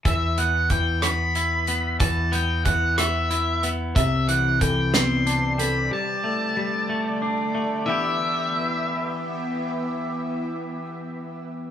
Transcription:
<<
  \new Staff \with { instrumentName = "Lead electric guitar" } { \time 6/8 \key e \minor \tempo 4. = 62 e''8 fis''8 g''8 b''4. | a''8 g''8 fis''8 e''4 r8 | e''8 fis''8 g''8 c'''4 b''8 | a''2 r4 |
e''2.~ | e''2. | }
  \new Staff \with { instrumentName = "Felt piano" } { \time 6/8 \key e \minor r2. | r2. | e''4 a'8 b4 a'8 | r2. |
r2. | r2. | }
  \new Staff \with { instrumentName = "Clean electric guitar" } { \time 6/8 \key e \minor e8 b8 e8 b8 e'8 b8 | e8 b8 e8 b8 e'8 b8 | c8 e8 e8 c'8 d'8 c'8 | g8 a8 g8 a8 d'8 a8 |
<e b e' g'>2.~ | <e b e' g'>2. | }
  \new Staff \with { instrumentName = "Ambient pad" } { \time 6/8 \key e \minor << { r2. | r2. | <g' d''>2.~ | <g' d''>2. |
<e b g' e''>2.~ | <e b g' e''>2. | } \\ { r2. | r2. | <c e>2. | <d a>2. |
r2. | r2. | } >> }
  \new Staff \with { instrumentName = "Picked electric bass" } { \clef bass \time 6/8 \key e \minor e,2. | e,2. | c,2. | r2. |
r2. | r2. | }
  \new DrumStaff \with { instrumentName = "Drums" } \drummode { \time 6/8 <hh bd>8 hh8 <hh bd>8 <hh ss>8 hh8 hh8 | <hh bd>8 hh8 <hh bd>8 <hh ss>8 hh8 hh8 | <hh bd>8 hh8 <hh bd>8 <hh sn>8 hh8 hh8 | r4. r4. |
r4. r4. | r4. r4. | }
>>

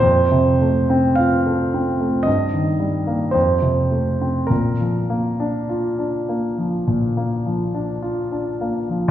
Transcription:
<<
  \new Staff \with { instrumentName = "Grand piano" } { \time 4/4 \key f \mixolydian \tempo 4 = 52 c''4 f''4 ees''4 c''4 | bes'2.~ bes'8 r8 | }
  \new Staff \with { instrumentName = "Grand piano" } { \time 4/4 \key f \mixolydian f,16 c16 a16 c'16 f'16 a'16 c'16 a16 g,16 ees16 g16 bes16 f,16 c16 a16 c'16 | bes,16 f16 bes16 d'16 f'16 d'16 bes16 f16 bes,16 bes16 f16 d'16 f'16 d'16 bes16 f16 | }
>>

